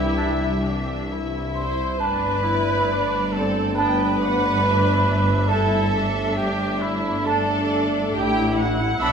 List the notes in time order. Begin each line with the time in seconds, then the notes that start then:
Already playing: C2 E3 D4 E4 G4 E5
0.17 D4 E5
0.64 D4
1.10 E4
1.55 C5
1.99 G1 G2 A3 D4 B4 D5 A5
2.45 E4
2.90 D4
3.33 C4 A4
3.76 B3 D4 B4 G5 A5
4.22 D4 F#5
4.64 E5
5.49 A3 D4 E4 A4 A5
5.94 D4
6.37 G4
6.81 E4
7.26 D4 A4 D5 A5
8.14 A1 A2 E4 G4 G5
8.58 F#5
9.00 B1 B2 B3 D4 E5 B5